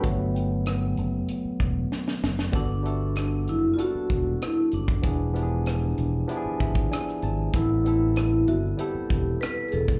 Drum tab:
HH |x-x-x-x-x-x-----|x-x-x-x-x-x-x-x-|x-x-x-x-x-x-x-x-|x-x-x-x-x-x-x-x-|
SD |----r-------oooo|----r-------r---|----r-------rr--|----r-------r---|
BD |o---------o-----|o---------o----o|o---------oo----|o---------o----o|